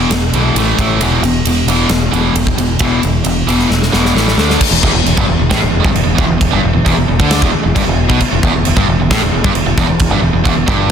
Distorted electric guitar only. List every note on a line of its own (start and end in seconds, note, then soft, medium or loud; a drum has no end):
0.00 0.11 E2 medium
0.00 0.11 B2 medium
0.00 0.11 E3 medium
0.13 0.32 E2 medium
0.13 0.33 B2 medium
0.34 0.55 E2 medium
0.34 0.56 B2 medium
0.34 0.55 E3 medium
0.57 0.78 A2 medium
0.57 0.78 E3 medium
0.57 0.78 A3 medium
0.80 1.00 A2 medium
0.80 1.00 E3 medium
0.80 1.00 A3 medium
1.01 1.22 E2 medium
1.01 1.22 B2 medium
1.01 1.22 E3 loud
1.25 1.44 E2 medium
1.25 1.44 B2 medium
1.47 1.67 E2 medium
1.47 1.67 B2 medium
1.68 1.88 E2 medium
1.68 1.89 B2 medium
1.68 1.90 E3 medium
1.89 2.10 E2 medium
1.89 2.10 B2 medium
2.11 2.32 E2 medium
2.11 2.33 B2 medium
2.11 2.34 E3 loud
2.33 2.55 E2 medium
2.33 2.55 B2 medium
2.58 2.78 E2 medium
2.58 2.78 B2 medium
2.79 3.00 E2 medium
2.79 3.01 B2 medium
2.79 3.01 E3 medium
3.02 3.22 E2 medium
3.02 3.23 B2 medium
3.24 3.45 E2 medium
3.24 3.45 B2 medium
3.47 3.68 E2 medium
3.47 3.69 B2 medium
3.47 3.69 E3 medium
3.69 3.90 E2 medium
3.69 3.90 B2 medium
3.91 4.13 E2 medium
3.91 4.14 B2 medium
3.91 4.14 E3 medium
4.15 4.36 A2 medium
4.15 4.37 E3 medium
4.15 4.37 A3 medium
4.38 4.59 D3 medium
4.38 4.59 A3 medium
4.38 4.59 D4 medium
4.62 muted distorted electric guitar stroke medium
4.72 4.82 E2 medium
4.83 4.92 E2 loud
4.93 5.04 E2 medium
5.06 5.17 E2 medium
5.17 5.27 G2 loud
5.28 5.38 E2 medium
5.39 5.50 E2 medium
5.50 5.61 A2 loud
5.61 5.69 E2 medium
5.70 5.79 E2 medium
5.80 5.91 G2 loud
5.91 6.02 E2 medium
6.04 6.14 E2 medium
6.15 6.25 E2 loud
6.26 6.37 E2 medium
6.38 6.50 E2 medium
6.51 6.62 G2 loud
6.63 6.72 E2 medium
6.73 6.84 E2 medium
6.85 6.96 E2 loud
6.97 7.07 E2 medium
7.08 7.19 E2 medium
7.19 7.41 D3 loud
7.43 7.51 E2 loud
7.53 muted distorted electric guitar stroke medium
7.63 7.75 E2 medium
7.75 7.86 G2 loud
7.86 8.04 E2 medium
8.09 8.20 B2 loud
8.22 muted distorted electric guitar stroke medium
8.32 8.43 E2 medium
8.44 8.54 E2 loud
8.55 8.66 E2 medium
8.67 8.76 E2 medium
8.76 8.87 G2 loud
8.89 8.99 E2 medium
9.00 9.11 E2 medium
9.11 9.21 A2 loud
9.22 9.33 E2 medium
9.34 9.44 E2 medium
9.45 9.55 G2 loud
9.55 9.65 E2 medium
9.66 9.77 E2 medium
9.78 9.88 E2 loud
9.89 9.98 E2 medium
10.00 10.11 E2 medium
10.11 10.22 G2 loud
10.22 10.32 E2 medium
10.33 10.42 E2 medium
10.44 10.54 E2 loud
10.55 10.66 E2 medium
10.66 10.91 G2 loud